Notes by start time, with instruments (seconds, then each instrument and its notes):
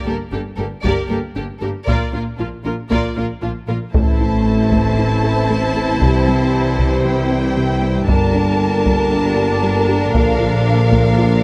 0.05 double bass section G1, cello section G2, viola section A#3 G4, synth arpeggio sound A#3, violin section A4 A#4
0.32 double bass section G1, cello section G2, viola section A#3 G4, synth arpeggio sound D4, violin section G4 A4
0.56 double bass section G1, cello section G2, synth arpeggio sound A#3, viola section A#3 G4, violin section A4 A#4
0.83 double bass section G1, cello section G2, synth arpeggio sound G3, viola section A#3 G4, violin section A#4 D5, taiko
1.08 double bass section G1, cello section G2, synth arpeggio sound A#3, viola section A#3 G4, violin section A4 A#4
1.35 double bass section G1, cello section G2, viola section A#3 G4, synth arpeggio sound D4, violin section G4 A4
1.60 double bass section G1, cello section G2, viola section A#3 G4, synth arpeggio sound G4, violin section A4 A#4
1.87 double bass section A#1, cello section A#2, synth arpeggio sound A#3, viola section A#3 F4, violin section A#4 D5, taiko
2.12 double bass section A#1, cello section A#2, viola section A#3 F4, synth arpeggio sound D4, violin section F4 A#4
2.38 double bass section A#1, cello section A#2, viola section A#3 F4, violin section D4 F4, synth arpeggio sound F4
2.64 double bass section A#1, cello section A#2, viola section A#3 F4, synth arpeggio sound D4, violin section F4 A#4
2.90 double bass section A#1, cello section A#2, synth arpeggio sound A#3, viola section A#3 F4, violin section A#4 D5, taiko
3.16 double bass section A#1, cello section A#2, viola section A#3 F4, synth arpeggio sound D4, violin section F4 A#4
3.42 double bass section A#1, cello section A#2, viola section A#3 F4, violin section D4 F4, synth arpeggio sound F4
3.68 double bass section A#1, cello section A#2, viola section A#3 F4, violin section F4 A#4, synth arpeggio sound A#4
3.93 tuba A1, double bass section A1, cello section A2, trombone section E3 A3, synth arpeggio sound A3, french horn section C4 E4, viola section E4, violin section C5 A5, taiko, sub drop
4.21 synth arpeggio sound E4
4.72 synth arpeggio sound A3, taiko
4.98 synth arpeggio sound E4
5.24 synth arpeggio sound A4
5.50 synth arpeggio sound A3
5.77 synth arpeggio sound A4
6.01 double bass section C2, tuba C2, cello section C3, synth arpeggio sound C3, trombone section G3, french horn section G4, taiko
6.28 synth arpeggio sound G3
6.79 synth arpeggio sound C3, taiko
7.05 synth arpeggio sound G3, violin section G5
7.31 synth arpeggio sound C4
7.57 synth arpeggio sound C3
7.82 synth arpeggio sound C4
8.07 double bass section G1, tuba G1, cello section G2, trombone section D3, synth arpeggio sound G3, french horn section A#3 A#4, viola section D4, violin section A#4 A5, taiko
8.35 synth arpeggio sound D4
8.86 synth arpeggio sound G3, taiko
9.12 synth arpeggio sound D4
9.37 synth arpeggio sound G4
9.63 synth arpeggio sound G3
9.88 synth arpeggio sound G4
10.14 double bass section A#1, tuba A#1, cello section A#2, trombone section F3, synth arpeggio sound A#3, french horn section A#4, violin section F5, taiko
10.40 synth arpeggio sound F4
10.92 synth arpeggio sound A#3, taiko
11.18 synth arpeggio sound F4